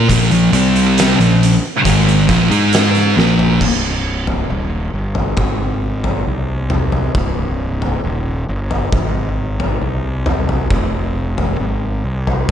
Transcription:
0.08 A#1 A#2 F3, kick, closed hi-hat
0.31 A#1 A#2 F3, closed hi-hat
0.53 C2 C3 G3 C4, closed hi-hat
0.76 closed hi-hat
0.98 snare, closed hi-hat
1.19 A#1 A#2 F3, closed hi-hat
1.43 closed hi-hat
1.85 G#1 G#2 D#3 G#3, kick, closed hi-hat
2.08 closed hi-hat
2.28 A#1 A#2 F3, kick, closed hi-hat
2.50 G#2 G#3 D#4 G#4, closed hi-hat
2.73 snare, closed hi-hat
2.95 snare, closed hi-hat
3.16 A#1 A#2 F3 A#3, snare
3.39 floor tom
3.61 C1, kick, floor tom, crash
4.27 floor tom
4.49 D#1
4.93 G1
5.15 floor tom
5.37 G#1, kick, floor tom
6.04 floor tom
6.27 C2
6.70 floor tom, mid tom
6.92 floor tom
7.15 C1, kick, floor tom
7.82 floor tom
8.04 D#1
8.48 G1
8.71 floor tom
8.92 G#1, kick, floor tom
9.60 floor tom
9.81 C2
10.26 floor tom, mid tom
10.49 floor tom
10.70 F1, kick, floor tom
11.38 floor tom
11.59 G#1
12.04 C2
12.27 floor tom

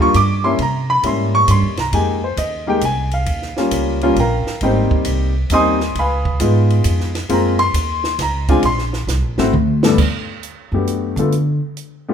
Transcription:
Already playing: F2
0.00 G3 A#3 D4 F4 C#6
0.14 G2 D6, kick, hi-hat pedal, ride
0.44 G3 A#3 C#4 E4 C6
0.59 C3 A#5, kick, ride
0.90 B5
1.03 G#2 G3 A#3 C#4 E4 C6, kick, ride
1.35 C#6
1.48 G2 C6, kick, hi-hat pedal, ride
1.62 E2
1.77 C2 A#5, snare, ride
1.92 F2 G#3 A#3 D#4 G4 G#5, kick, ride
2.24 C5
2.37 D#2 D#5, kick, hi-hat pedal, ride
2.67 G#3 A#3 D#4 G4 G5
2.81 C2 G#5, kick, hi-hat pedal, ride
3.11 F5, ride
3.26 D#2, kick, ride
3.42 snare
3.57 G3 A#3 C#4 F4, muted upright bass stroke, snare
3.71 C#2, kick, hi-hat pedal, ride
4.01 G3 A#3 C#4 F4, ride
4.16 A#1 G5 A#5, kick, ride
4.20 A#4 F5
4.47 muted upright bass stroke, snare
4.61 G#1 G3 A#3 C4 D#4 C5 D#5 G5, kick, ride
4.65 G4
4.91 muted upright bass stroke, kick
5.05 C2, kick, hi-hat pedal, ride
5.50 D#2 G3 A#3 C4 D#4 D#6, kick, hi-hat pedal, ride
5.54 D#5 G#5 C6
5.80 snare
5.95 C#2 B5, kick, ride
5.99 B4 F5 G#5
6.25 kick
6.40 G#2 G#3 B3 D#4 F4, kick, hi-hat pedal, ride
6.70 ride
6.84 F2, kick, hi-hat pedal, ride
7.00 snare
7.15 snare, ride
7.29 F#2 G#3 A#3 C4 F4 A#5, kick, ride
7.59 C6, ride
7.74 D#2, kick, hi-hat pedal, ride
8.04 snare
8.18 C#2 A#5, kick, snare, hi-hat pedal, ride
8.48 G#3 C4 D4 F4 G#5, kick, ride
8.63 A#1 C6, kick, ride
8.78 snare
8.93 snare
9.07 C2, snare, hi-hat pedal
9.22 A#1
9.38 G#1 A3 C4 E4 F#4, snare
9.52 D2, mid tom
9.83 G2 A3 B3 D4 A4, snare
9.98 kick, crash
10.43 closed hi-hat
10.72 F#2 A3 B3 D4 F#4 G4
10.87 closed hi-hat
11.16 D3 A3 B3 D4 F4 A4, closed hi-hat
11.32 closed hi-hat
11.77 closed hi-hat
12.08 A3 B3 D4 F4 G4

